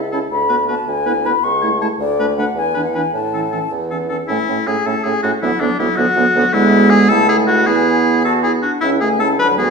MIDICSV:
0, 0, Header, 1, 6, 480
1, 0, Start_track
1, 0, Key_signature, 3, "major"
1, 0, Tempo, 378072
1, 1113, Time_signature, 6, 3, 24, 8
1, 12316, End_track
2, 0, Start_track
2, 0, Title_t, "Flute"
2, 0, Program_c, 0, 73
2, 0, Note_on_c, 0, 76, 60
2, 152, Note_off_c, 0, 76, 0
2, 164, Note_on_c, 0, 81, 64
2, 240, Note_off_c, 0, 81, 0
2, 400, Note_on_c, 0, 83, 63
2, 867, Note_off_c, 0, 83, 0
2, 882, Note_on_c, 0, 81, 61
2, 1122, Note_on_c, 0, 80, 68
2, 1141, Note_off_c, 0, 81, 0
2, 1598, Note_on_c, 0, 83, 70
2, 1617, Note_off_c, 0, 80, 0
2, 1825, Note_on_c, 0, 85, 73
2, 1844, Note_off_c, 0, 83, 0
2, 2288, Note_off_c, 0, 85, 0
2, 2296, Note_on_c, 0, 81, 66
2, 2372, Note_off_c, 0, 81, 0
2, 2542, Note_on_c, 0, 74, 75
2, 3004, Note_off_c, 0, 74, 0
2, 3012, Note_on_c, 0, 78, 75
2, 3248, Note_off_c, 0, 78, 0
2, 3262, Note_on_c, 0, 80, 70
2, 3604, Note_off_c, 0, 80, 0
2, 3612, Note_on_c, 0, 78, 54
2, 3731, Note_on_c, 0, 80, 64
2, 3750, Note_off_c, 0, 78, 0
2, 3977, Note_off_c, 0, 80, 0
2, 3992, Note_on_c, 0, 81, 57
2, 4708, Note_off_c, 0, 81, 0
2, 5455, Note_on_c, 0, 76, 54
2, 5954, Note_on_c, 0, 80, 54
2, 5973, Note_off_c, 0, 76, 0
2, 6176, Note_on_c, 0, 81, 49
2, 6196, Note_off_c, 0, 80, 0
2, 6407, Note_off_c, 0, 81, 0
2, 6415, Note_on_c, 0, 80, 58
2, 6491, Note_off_c, 0, 80, 0
2, 6661, Note_on_c, 0, 78, 52
2, 6737, Note_off_c, 0, 78, 0
2, 6892, Note_on_c, 0, 76, 52
2, 6968, Note_off_c, 0, 76, 0
2, 7128, Note_on_c, 0, 74, 54
2, 7347, Note_off_c, 0, 74, 0
2, 7354, Note_on_c, 0, 76, 62
2, 7430, Note_off_c, 0, 76, 0
2, 7593, Note_on_c, 0, 78, 65
2, 8299, Note_on_c, 0, 76, 75
2, 8318, Note_off_c, 0, 78, 0
2, 8762, Note_on_c, 0, 80, 83
2, 8781, Note_off_c, 0, 76, 0
2, 9004, Note_on_c, 0, 81, 85
2, 9023, Note_off_c, 0, 80, 0
2, 9255, Note_on_c, 0, 80, 77
2, 9274, Note_off_c, 0, 81, 0
2, 9495, Note_on_c, 0, 78, 68
2, 9514, Note_off_c, 0, 80, 0
2, 9735, Note_off_c, 0, 78, 0
2, 9743, Note_on_c, 0, 80, 69
2, 10143, Note_off_c, 0, 80, 0
2, 10471, Note_on_c, 0, 81, 61
2, 10696, Note_off_c, 0, 81, 0
2, 10704, Note_on_c, 0, 80, 52
2, 10780, Note_off_c, 0, 80, 0
2, 10957, Note_on_c, 0, 78, 55
2, 11203, Note_on_c, 0, 76, 62
2, 11222, Note_off_c, 0, 78, 0
2, 11444, Note_on_c, 0, 80, 64
2, 11463, Note_off_c, 0, 76, 0
2, 11682, Note_on_c, 0, 81, 71
2, 11701, Note_off_c, 0, 80, 0
2, 11918, Note_off_c, 0, 81, 0
2, 11926, Note_on_c, 0, 83, 74
2, 12158, Note_off_c, 0, 83, 0
2, 12166, Note_on_c, 0, 80, 64
2, 12242, Note_off_c, 0, 80, 0
2, 12316, End_track
3, 0, Start_track
3, 0, Title_t, "Oboe"
3, 0, Program_c, 1, 68
3, 152, Note_on_c, 1, 69, 39
3, 241, Note_off_c, 1, 69, 0
3, 623, Note_on_c, 1, 71, 39
3, 712, Note_off_c, 1, 71, 0
3, 864, Note_on_c, 1, 71, 40
3, 952, Note_off_c, 1, 71, 0
3, 1338, Note_on_c, 1, 71, 42
3, 1426, Note_off_c, 1, 71, 0
3, 1591, Note_on_c, 1, 71, 43
3, 1676, Note_off_c, 1, 71, 0
3, 2054, Note_on_c, 1, 73, 45
3, 2141, Note_off_c, 1, 73, 0
3, 2303, Note_on_c, 1, 73, 47
3, 2388, Note_off_c, 1, 73, 0
3, 2787, Note_on_c, 1, 71, 47
3, 2871, Note_off_c, 1, 71, 0
3, 3032, Note_on_c, 1, 71, 49
3, 3114, Note_off_c, 1, 71, 0
3, 3483, Note_on_c, 1, 71, 47
3, 3573, Note_off_c, 1, 71, 0
3, 3740, Note_on_c, 1, 71, 41
3, 3827, Note_off_c, 1, 71, 0
3, 4236, Note_on_c, 1, 69, 36
3, 4322, Note_off_c, 1, 69, 0
3, 4468, Note_on_c, 1, 69, 35
3, 4557, Note_off_c, 1, 69, 0
3, 4957, Note_on_c, 1, 69, 34
3, 5047, Note_off_c, 1, 69, 0
3, 5195, Note_on_c, 1, 69, 35
3, 5287, Note_off_c, 1, 69, 0
3, 5433, Note_on_c, 1, 64, 64
3, 5928, Note_on_c, 1, 68, 63
3, 5947, Note_off_c, 1, 64, 0
3, 6175, Note_on_c, 1, 69, 55
3, 6194, Note_off_c, 1, 68, 0
3, 6395, Note_on_c, 1, 68, 62
3, 6415, Note_off_c, 1, 69, 0
3, 6632, Note_off_c, 1, 68, 0
3, 6640, Note_on_c, 1, 66, 61
3, 6750, Note_off_c, 1, 66, 0
3, 6880, Note_on_c, 1, 64, 66
3, 7115, Note_on_c, 1, 62, 62
3, 7134, Note_off_c, 1, 64, 0
3, 7342, Note_off_c, 1, 62, 0
3, 7350, Note_on_c, 1, 64, 70
3, 7573, Note_on_c, 1, 66, 80
3, 7592, Note_off_c, 1, 64, 0
3, 8296, Note_on_c, 1, 64, 93
3, 8315, Note_off_c, 1, 66, 0
3, 8756, Note_on_c, 1, 68, 89
3, 8775, Note_off_c, 1, 64, 0
3, 9003, Note_on_c, 1, 69, 94
3, 9022, Note_off_c, 1, 68, 0
3, 9244, Note_off_c, 1, 69, 0
3, 9252, Note_on_c, 1, 68, 79
3, 9362, Note_off_c, 1, 68, 0
3, 9488, Note_on_c, 1, 66, 84
3, 9736, Note_on_c, 1, 68, 80
3, 9755, Note_off_c, 1, 66, 0
3, 10463, Note_off_c, 1, 68, 0
3, 10471, Note_on_c, 1, 69, 61
3, 10581, Note_off_c, 1, 69, 0
3, 10705, Note_on_c, 1, 68, 64
3, 10818, Note_off_c, 1, 68, 0
3, 10950, Note_on_c, 1, 66, 58
3, 11062, Note_off_c, 1, 66, 0
3, 11183, Note_on_c, 1, 64, 81
3, 11295, Note_off_c, 1, 64, 0
3, 11430, Note_on_c, 1, 68, 69
3, 11541, Note_off_c, 1, 68, 0
3, 11677, Note_on_c, 1, 69, 76
3, 11786, Note_off_c, 1, 69, 0
3, 11926, Note_on_c, 1, 71, 77
3, 12033, Note_off_c, 1, 71, 0
3, 12167, Note_on_c, 1, 68, 80
3, 12316, Note_off_c, 1, 68, 0
3, 12316, End_track
4, 0, Start_track
4, 0, Title_t, "Clarinet"
4, 0, Program_c, 2, 71
4, 168, Note_on_c, 2, 64, 39
4, 253, Note_off_c, 2, 64, 0
4, 633, Note_on_c, 2, 66, 37
4, 720, Note_off_c, 2, 66, 0
4, 867, Note_on_c, 2, 66, 38
4, 955, Note_off_c, 2, 66, 0
4, 1346, Note_on_c, 2, 64, 46
4, 1432, Note_off_c, 2, 64, 0
4, 1578, Note_on_c, 2, 64, 42
4, 1665, Note_off_c, 2, 64, 0
4, 2071, Note_on_c, 2, 64, 46
4, 2154, Note_off_c, 2, 64, 0
4, 2311, Note_on_c, 2, 64, 46
4, 2394, Note_off_c, 2, 64, 0
4, 2784, Note_on_c, 2, 62, 49
4, 2869, Note_off_c, 2, 62, 0
4, 3021, Note_on_c, 2, 62, 49
4, 3106, Note_off_c, 2, 62, 0
4, 3505, Note_on_c, 2, 62, 46
4, 3590, Note_off_c, 2, 62, 0
4, 3756, Note_on_c, 2, 62, 43
4, 3839, Note_off_c, 2, 62, 0
4, 4240, Note_on_c, 2, 61, 39
4, 4325, Note_off_c, 2, 61, 0
4, 4489, Note_on_c, 2, 61, 38
4, 4573, Note_off_c, 2, 61, 0
4, 4979, Note_on_c, 2, 61, 36
4, 5064, Note_off_c, 2, 61, 0
4, 5219, Note_on_c, 2, 61, 35
4, 5305, Note_off_c, 2, 61, 0
4, 5453, Note_on_c, 2, 61, 46
4, 5562, Note_off_c, 2, 61, 0
4, 5707, Note_on_c, 2, 61, 42
4, 5814, Note_off_c, 2, 61, 0
4, 5945, Note_on_c, 2, 61, 40
4, 6052, Note_off_c, 2, 61, 0
4, 6176, Note_on_c, 2, 61, 46
4, 6284, Note_off_c, 2, 61, 0
4, 6429, Note_on_c, 2, 61, 39
4, 6534, Note_off_c, 2, 61, 0
4, 6657, Note_on_c, 2, 61, 43
4, 6764, Note_off_c, 2, 61, 0
4, 6902, Note_on_c, 2, 59, 50
4, 7007, Note_off_c, 2, 59, 0
4, 7143, Note_on_c, 2, 59, 48
4, 7246, Note_off_c, 2, 59, 0
4, 7372, Note_on_c, 2, 59, 50
4, 7477, Note_off_c, 2, 59, 0
4, 7609, Note_on_c, 2, 59, 53
4, 7713, Note_off_c, 2, 59, 0
4, 7854, Note_on_c, 2, 59, 53
4, 7956, Note_off_c, 2, 59, 0
4, 8082, Note_on_c, 2, 59, 56
4, 8186, Note_off_c, 2, 59, 0
4, 8306, Note_on_c, 2, 59, 61
4, 8967, Note_off_c, 2, 59, 0
4, 9013, Note_on_c, 2, 64, 67
4, 9726, Note_off_c, 2, 64, 0
4, 9738, Note_on_c, 2, 64, 58
4, 10408, Note_off_c, 2, 64, 0
4, 10463, Note_on_c, 2, 66, 67
4, 10711, Note_on_c, 2, 64, 54
4, 10730, Note_off_c, 2, 66, 0
4, 10947, Note_on_c, 2, 62, 47
4, 10966, Note_off_c, 2, 64, 0
4, 11176, Note_off_c, 2, 62, 0
4, 11184, Note_on_c, 2, 64, 53
4, 11440, Note_on_c, 2, 61, 48
4, 11459, Note_off_c, 2, 64, 0
4, 11689, Note_on_c, 2, 64, 47
4, 11708, Note_off_c, 2, 61, 0
4, 11916, Note_off_c, 2, 64, 0
4, 11924, Note_on_c, 2, 62, 51
4, 12169, Note_on_c, 2, 66, 53
4, 12188, Note_off_c, 2, 62, 0
4, 12316, Note_off_c, 2, 66, 0
4, 12316, End_track
5, 0, Start_track
5, 0, Title_t, "French horn"
5, 0, Program_c, 3, 60
5, 163, Note_on_c, 3, 61, 35
5, 249, Note_off_c, 3, 61, 0
5, 632, Note_on_c, 3, 59, 36
5, 719, Note_off_c, 3, 59, 0
5, 876, Note_on_c, 3, 59, 35
5, 961, Note_off_c, 3, 59, 0
5, 1347, Note_on_c, 3, 59, 42
5, 1433, Note_off_c, 3, 59, 0
5, 1596, Note_on_c, 3, 59, 42
5, 1679, Note_off_c, 3, 59, 0
5, 2070, Note_on_c, 3, 57, 41
5, 2154, Note_off_c, 3, 57, 0
5, 2304, Note_on_c, 3, 57, 45
5, 2388, Note_off_c, 3, 57, 0
5, 2781, Note_on_c, 3, 57, 48
5, 2866, Note_off_c, 3, 57, 0
5, 3023, Note_on_c, 3, 57, 43
5, 3107, Note_off_c, 3, 57, 0
5, 3493, Note_on_c, 3, 52, 45
5, 3581, Note_off_c, 3, 52, 0
5, 3755, Note_on_c, 3, 52, 39
5, 3838, Note_off_c, 3, 52, 0
5, 4235, Note_on_c, 3, 52, 35
5, 4322, Note_off_c, 3, 52, 0
5, 4483, Note_on_c, 3, 52, 37
5, 4569, Note_off_c, 3, 52, 0
5, 4975, Note_on_c, 3, 52, 33
5, 5061, Note_off_c, 3, 52, 0
5, 5222, Note_on_c, 3, 52, 32
5, 5307, Note_off_c, 3, 52, 0
5, 5470, Note_on_c, 3, 57, 44
5, 5576, Note_off_c, 3, 57, 0
5, 5697, Note_on_c, 3, 57, 37
5, 5806, Note_off_c, 3, 57, 0
5, 5929, Note_on_c, 3, 57, 38
5, 6040, Note_off_c, 3, 57, 0
5, 6171, Note_on_c, 3, 57, 42
5, 6280, Note_off_c, 3, 57, 0
5, 6404, Note_on_c, 3, 57, 39
5, 6514, Note_off_c, 3, 57, 0
5, 6638, Note_on_c, 3, 57, 39
5, 6749, Note_off_c, 3, 57, 0
5, 6885, Note_on_c, 3, 54, 50
5, 6993, Note_off_c, 3, 54, 0
5, 7117, Note_on_c, 3, 54, 45
5, 7226, Note_off_c, 3, 54, 0
5, 7363, Note_on_c, 3, 54, 44
5, 7469, Note_off_c, 3, 54, 0
5, 7573, Note_on_c, 3, 54, 50
5, 7685, Note_off_c, 3, 54, 0
5, 7813, Note_on_c, 3, 54, 50
5, 7925, Note_off_c, 3, 54, 0
5, 8056, Note_on_c, 3, 54, 50
5, 8166, Note_off_c, 3, 54, 0
5, 8289, Note_on_c, 3, 56, 67
5, 9003, Note_on_c, 3, 57, 64
5, 9022, Note_off_c, 3, 56, 0
5, 9719, Note_off_c, 3, 57, 0
5, 9727, Note_on_c, 3, 59, 59
5, 10929, Note_off_c, 3, 59, 0
5, 11209, Note_on_c, 3, 61, 51
5, 11451, Note_on_c, 3, 57, 45
5, 11470, Note_off_c, 3, 61, 0
5, 11680, Note_on_c, 3, 61, 44
5, 11699, Note_off_c, 3, 57, 0
5, 11916, Note_off_c, 3, 61, 0
5, 11923, Note_on_c, 3, 54, 54
5, 12154, Note_on_c, 3, 59, 49
5, 12173, Note_off_c, 3, 54, 0
5, 12316, Note_off_c, 3, 59, 0
5, 12316, End_track
6, 0, Start_track
6, 0, Title_t, "Bassoon"
6, 0, Program_c, 4, 70
6, 0, Note_on_c, 4, 37, 44
6, 276, Note_off_c, 4, 37, 0
6, 387, Note_on_c, 4, 38, 45
6, 988, Note_off_c, 4, 38, 0
6, 1110, Note_on_c, 4, 38, 50
6, 1704, Note_off_c, 4, 38, 0
6, 1816, Note_on_c, 4, 37, 50
6, 2413, Note_off_c, 4, 37, 0
6, 2526, Note_on_c, 4, 38, 59
6, 3129, Note_off_c, 4, 38, 0
6, 3237, Note_on_c, 4, 40, 58
6, 3850, Note_off_c, 4, 40, 0
6, 3972, Note_on_c, 4, 45, 49
6, 4589, Note_off_c, 4, 45, 0
6, 4709, Note_on_c, 4, 40, 43
6, 5329, Note_off_c, 4, 40, 0
6, 5446, Note_on_c, 4, 45, 47
6, 5557, Note_off_c, 4, 45, 0
6, 5693, Note_on_c, 4, 45, 44
6, 5803, Note_off_c, 4, 45, 0
6, 5929, Note_on_c, 4, 45, 46
6, 6040, Note_off_c, 4, 45, 0
6, 6166, Note_on_c, 4, 45, 48
6, 6277, Note_off_c, 4, 45, 0
6, 6406, Note_on_c, 4, 45, 45
6, 6516, Note_off_c, 4, 45, 0
6, 6648, Note_on_c, 4, 45, 50
6, 6757, Note_off_c, 4, 45, 0
6, 6883, Note_on_c, 4, 38, 53
6, 6992, Note_off_c, 4, 38, 0
6, 7119, Note_on_c, 4, 38, 51
6, 7227, Note_off_c, 4, 38, 0
6, 7350, Note_on_c, 4, 38, 50
6, 7459, Note_off_c, 4, 38, 0
6, 7589, Note_on_c, 4, 38, 57
6, 7698, Note_off_c, 4, 38, 0
6, 7824, Note_on_c, 4, 38, 59
6, 7933, Note_off_c, 4, 38, 0
6, 8067, Note_on_c, 4, 38, 64
6, 8174, Note_off_c, 4, 38, 0
6, 8293, Note_on_c, 4, 38, 69
6, 8960, Note_off_c, 4, 38, 0
6, 9011, Note_on_c, 4, 37, 67
6, 9736, Note_on_c, 4, 40, 58
6, 9755, Note_off_c, 4, 37, 0
6, 10958, Note_off_c, 4, 40, 0
6, 11193, Note_on_c, 4, 37, 53
6, 11916, Note_on_c, 4, 38, 62
6, 11935, Note_off_c, 4, 37, 0
6, 12316, Note_off_c, 4, 38, 0
6, 12316, End_track
0, 0, End_of_file